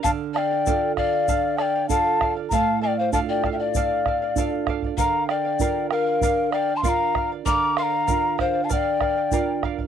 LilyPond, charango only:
\new Staff \with { instrumentName = "Charango" } { \time 4/4 \key d \minor \tempo 4 = 97 <a' d'' f''>8 <a' d'' f''>16 <d'' f''>16 <a' d'' f''>8 <a' d'' f''>16 <d'' f''>16 <a' d'' f''>8 <a' d'' f''>16 <d'' f''>16 <a' d'' f''>8 <a' d'' f''>16 <d'' f''>16 | <a' d'' f''>8 <a' d'' f''>16 <d'' f''>16 <a' d'' f''>8 <a' d'' f''>16 <d'' f''>16 <a' d'' f''>8 <a' d'' f''>16 <d'' f''>16 <a' d'' f''>8 <a' d'' f''>16 <d'' f''>16 | <bes' d'' f''>8 <bes' d'' f''>16 <d'' f''>16 <bes' d'' f''>8 <bes' d'' f''>16 <d'' f''>16 <bes' d'' f''>8 <bes' d'' f''>16 <d'' f''>16 <bes' d'' f''>8 <bes' d'' f''>16 <d'' f''>16 | <bes' d'' f''>8 <bes' d'' f''>16 <d'' f''>16 <bes' d'' f''>8 <bes' d'' f''>16 <d'' f''>16 <bes' d'' f''>8 <bes' d'' f''>16 <d'' f''>16 <bes' d'' f''>8 <bes' d'' f''>16 <d'' f''>16 | }